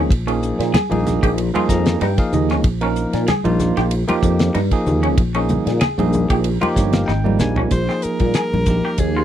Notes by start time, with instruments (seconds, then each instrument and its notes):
Already playing: fretless electric bass D#2, tine electric piano F3 A#3 D#4 G#4
0.10 fretless electric bass A#1, kick, ride
0.27 tine electric piano F3 A#3 D#4 G#4, clean electric guitar C#4, ride
0.43 hi-hat pedal
0.59 fretless electric bass A#2, snare, ride
0.74 clean electric guitar G#4, snare, ride, high conga, low conga
0.90 fretless electric bass A#1, tine electric piano F3 A#3 D#4 G#4, ride, high conga
1.07 snare, hi-hat pedal, low conga
1.23 fretless electric bass A#1, clean electric guitar G4, kick, ride
1.38 ride
1.54 tine electric piano F3 A#3 D#4 G#4, clean electric guitar F4, ride, high conga
1.69 fretless electric bass F2, tine electric piano A#5, kick, snare, hi-hat pedal
1.86 snare, ride
2.01 fretless electric bass G2, clean electric guitar D#4, tine electric piano G5, snare, ride
2.18 tine electric piano F3 A#3 D#4 G#4 F5, kick, ride
2.33 fretless electric bass D#2, tine electric piano D#5, hi-hat pedal, low conga
2.50 clean electric guitar C#4, snare, ride
2.64 fretless electric bass A#1, kick, ride
2.81 tine electric piano F3 A#3 D#4 A#4, clean electric guitar C#4, ride
2.96 hi-hat pedal
3.13 fretless electric bass A#2, snare, ride
3.28 clean electric guitar G#4, snare, ride, high conga, low conga
3.44 fretless electric bass A#1, tine electric piano F3 A#3 D#4 F4, ride, high conga
3.59 snare, hi-hat pedal, low conga
3.77 fretless electric bass A#1, clean electric guitar G4, snare, ride
3.91 ride
4.08 tine electric piano F3 A#3 D#4 G4, clean electric guitar F4, ride, high conga
4.23 fretless electric bass F2, kick, hi-hat pedal
4.39 snare, ride
4.55 fretless electric bass G2, clean electric guitar D#4, snare, ride
4.71 tine electric piano F3 A#3 D#4 G#4, kick, ride
4.86 fretless electric bass D#2, hi-hat pedal, low conga
5.03 clean electric guitar C#4, ride
5.17 fretless electric bass A#1, kick, ride
5.34 tine electric piano F3 A#3 D#4 G#4, clean electric guitar C#4, ride
5.49 hi-hat pedal, high conga, low conga
5.66 fretless electric bass A#2, snare, ride
5.81 clean electric guitar G#4, snare, ride, low conga
5.98 fretless electric bass A#1, tine electric piano F3 A#3 D#4 G#4, ride, high conga
6.13 hi-hat pedal, low conga
6.30 fretless electric bass A#1, clean electric guitar G4, kick, ride
6.44 ride
6.61 tine electric piano F3 A#3 D#4 G4, clean electric guitar F4, ride, high conga
6.75 fretless electric bass G1, tine electric piano C#5, kick, snare, hi-hat pedal
6.93 tine electric piano F5, snare, ride
7.06 fretless electric bass G#1, clean electric guitar D#4, tine electric piano G5, snare
7.24 tine electric piano F3 G3 A#3 D#4, high conga
7.39 fretless electric bass A#1, tine electric piano G#5, snare, hi-hat pedal, low conga
7.56 clean electric guitar C#4, floor tom
7.71 fretless electric bass A#1, soprano saxophone C5, kick, hi-hat pedal, ride
7.89 tine electric piano F3 A#3 D#4 G#4, clean electric guitar C4, snare
8.02 soprano saxophone A#4, muted fretless electric bass stroke, hi-hat pedal, ride
8.20 fretless electric bass A#2, kick, ride, high conga
8.34 clean electric guitar G#4, snare, hi-hat pedal, ride
8.53 fretless electric bass A#1, high conga
8.66 tine electric piano F3 A#3 D#4 G4, kick, hi-hat pedal, ride, low conga
8.85 clean electric guitar G4
8.98 fretless electric bass D#2, soprano saxophone G#4, kick, hi-hat pedal, ride
9.17 clean electric guitar F4